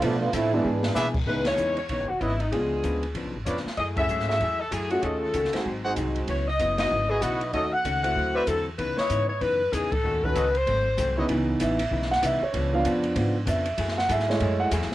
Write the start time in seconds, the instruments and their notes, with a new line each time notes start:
0.02 upright bass B2, hollow-body jazz guitar B2 F3 A3 D4, grand piano F3 A3 B3 D4 F4, trombone section F3 A3 B3 D4, kick, ride
0.20 trombone section A3 B3 D4 F4
0.33 upright bass A2, hollow-body jazz guitar B2 F3 A3 D4, trombone section F3 A3 C4 E4, kick, hi-hat pedal, ride
0.52 trombone section E3 G#3 B3 D4, grand piano E3 G#3 B3 D4 E4
0.64 upright bass G#2, hollow-body jazz guitar E3 B3 D4 G#4
0.83 snare
0.95 upright bass B2, hollow-body jazz guitar E3 B3 D4 G#4, trumpet section G#4 B4 D5 E5, snare, hi-hat pedal
1.14 kick, crash
1.26 upright bass C#2, hollow-body jazz guitar C#3 E3 B3 D#4, grand piano G#3 B3 D#4 E4, saxophone section B4, kick
1.45 saxophone section C#5, snare, ride
1.57 upright bass E2, hollow-body jazz guitar C#3 E3 B3 D#4, hi-hat pedal
1.77 saxophone section C#5, ride
1.89 upright bass B1, hollow-body jazz guitar C#3 E3 B3 D#4, kick, ride
2.00 upright bass G#1
2.09 upright bass E1, saxophone section F#4
2.20 upright bass G#1, hollow-body jazz guitar C#3 E3 B3 D#4, saxophone section E4, trumpet section E4 B4 C#5 D#5, kick, hi-hat pedal, ride
2.40 saxophone section D#4, ride
2.51 upright bass C#2, hollow-body jazz guitar C#3 F3 B3 D4, grand piano G#3 B3 D4 F4, saxophone section G#4, kick, ride
2.83 upright bass D2, hollow-body jazz guitar C#3 F3 B3 D4, kick, hi-hat pedal, ride
3.03 ride
3.15 upright bass C#2, hollow-body jazz guitar C#3 F3 B3 D4, kick, ride
3.25 upright bass B1
3.35 upright bass G#1
3.46 upright bass F2, hollow-body jazz guitar C#3 F3 B3 D4, trumpet section F4 B4 C#5 D5, kick, hi-hat pedal, ride
3.57 snare
3.65 muted upright bass stroke, snare
3.77 upright bass F#2, hollow-body jazz guitar F#3 A3 E4 G#4, saxophone section D#5, kick, ride
3.96 grand piano A3 C#4 E4 G#4, trumpet section F#4 G#4 A4 E5, saxophone section E5, kick, ride
4.08 upright bass G#2, hollow-body jazz guitar F#3 A3 E4 G#4, hi-hat pedal
4.20 snare
4.28 trumpet section F#4 G#4 A4 E5, saxophone section E5, snare
4.40 upright bass E2, hollow-body jazz guitar F#3 A3 E4 G#4, kick, ride
4.60 saxophone section A4
4.71 upright bass F#2, hollow-body jazz guitar F#3 A3 E4 G#4, saxophone section G#4, kick, hi-hat pedal, ride
4.90 grand piano A3 C#4 F4 G#4, saxophone section F#4, ride
5.02 upright bass D#2, hollow-body jazz guitar D#3 A3 C#4 F#4, trumpet section F#4 A4 C#5 D#5, saxophone section A4, kick, ride
5.34 upright bass C#2, hollow-body jazz guitar D#3 A3 C#4 F#4, kick, hi-hat pedal, ride
5.45 snare
5.53 grand piano G#3 C4 D#4 F#4, muted upright bass stroke, snare, ride
5.65 upright bass G#1, hollow-body jazz guitar G#2 F#3 C4 D#4, kick
5.84 grand piano G#3 C4 D#4 F#4, trumpet section F#4 G#4 C5 F#5
5.96 upright bass C2, hollow-body jazz guitar G#2 F#3 C4 D#4, kick, hi-hat pedal, ride
6.16 ride
6.27 upright bass C#2, hollow-body jazz guitar C#3 F#3 B3 E4, saxophone section C#5, kick, ride
6.48 saxophone section D#5
6.59 upright bass F#1, hollow-body jazz guitar C#3 F#3 B3 E4, kick, hi-hat pedal, ride
6.78 grand piano B3 D#4 E4 F#4, saxophone section D#5, snare, ride
6.90 upright bass G#1, hollow-body jazz guitar C#3 F#3 B3 E4
7.09 trumpet section E4 F#4 B4 D#5, saxophone section G#4
7.22 upright bass B1, hollow-body jazz guitar C#3 F#3 B3 E4, saxophone section F#4, kick, hi-hat pedal, ride
7.41 ride
7.53 upright bass D#2, hollow-body jazz guitar D#3 A3 C#4 F#4, grand piano A3 C#4 D#4 F#4, trumpet section F#4 A4 C#5 D#5, saxophone section D#5, kick, ride
7.73 saxophone section F#5
7.84 upright bass C#2, hollow-body jazz guitar D#3 A3 C#4 F#4, kick, hi-hat pedal, ride
8.03 grand piano A3 C4 E4 F#4, saxophone section F#5, ride
8.15 upright bass D2, hollow-body jazz guitar D3 F#3 C4 E4, kick
8.35 trumpet section F#4 C5 D5 E5, saxophone section B4
8.47 upright bass E2, hollow-body jazz guitar D3 F#3 C4 E4, saxophone section A4, kick, hi-hat pedal, ride
8.78 upright bass C#2, hollow-body jazz guitar C#3 E3 B3 D#4, saxophone section B4, kick, ride
8.97 trumpet section E4 B4 C#5 D#5, saxophone section C#5, muted upright bass stroke, snare
9.10 upright bass G#2, hollow-body jazz guitar C#3 E3 B3 D#4, kick, hi-hat pedal, ride
9.29 saxophone section C#5
9.41 upright bass F#2, hollow-body jazz guitar C#3 E3 B3 D#4, saxophone section B4, kick, ride
9.72 upright bass E2, hollow-body jazz guitar C#3 E3 B3 D#4, saxophone section G#4, kick, hi-hat pedal, ride
9.92 saxophone section A4, kick, ride
10.04 upright bass D#2, hollow-body jazz guitar D#3 A3 C#4 F#4
10.23 grand piano C#4 D#4 F#4 A4, saxophone section B4, kick
10.35 upright bass C#2, hollow-body jazz guitar D#3 A3 C#4 F#4, trumpet section F#4 A4 C#5 D#5, kick, hi-hat pedal, ride
10.55 saxophone section C5, ride
10.66 upright bass G#1, hollow-body jazz guitar G#2 F#3 A3 C4, kick, ride
10.97 upright bass C2, hollow-body jazz guitar G#2 F#3 A3 C4, kick, hi-hat pedal, ride
11.17 grand piano C#3 B3 D#4 E4 B4, trumpet section E4 B4 C#5 D#5
11.29 upright bass C#2, hollow-body jazz guitar C#3 E3 B3 D#4, grand piano E3 B3 D#4, kick, ride
11.60 upright bass A1, hollow-body jazz guitar C#3 E3 B3 D#4, grand piano E5, kick, hi-hat pedal, ride
11.79 ride
11.91 upright bass B1, hollow-body jazz guitar C#3 E3 B3 D#4, kick
12.02 snare
12.11 grand piano F#5, snare
12.22 upright bass C2, hollow-body jazz guitar C#3 E3 B3 D#4, grand piano E5, kick, hi-hat pedal, ride
12.42 grand piano C#5, muted upright bass stroke
12.53 upright bass C#2, hollow-body jazz guitar C#3 F3 B3 D4, kick, ride
12.73 grand piano F3 B3 D4 F5
12.84 upright bass F2, hollow-body jazz guitar C#3 F3 B3 D4, kick, hi-hat pedal, ride
13.03 ride
13.15 upright bass G#2, hollow-body jazz guitar C#3 F3 B3 D4, grand piano F3 B3 D4, kick, ride
13.46 upright bass F2, hollow-body jazz guitar C#3 F3 B3 D4, grand piano E5, kick, hi-hat pedal, ride
13.66 ride
13.78 upright bass F#2, hollow-body jazz guitar F#3 A3 E4 G#4, kick, ride
13.88 snare
13.98 grand piano F#5, snare
14.09 upright bass G#2, hollow-body jazz guitar F#3 A3 E4 G#4, grand piano E5, kick, hi-hat pedal, ride
14.20 snare
14.29 grand piano G#3 A3 E4 C#5, snare
14.40 upright bass F#2, hollow-body jazz guitar F#3 A3 E4 G#4, kick, ride
14.60 grand piano F#5
14.71 upright bass E2, hollow-body jazz guitar F#3 A3 E4 G#4, kick, hi-hat pedal, ride
14.82 upright bass C#2, snare
14.92 snare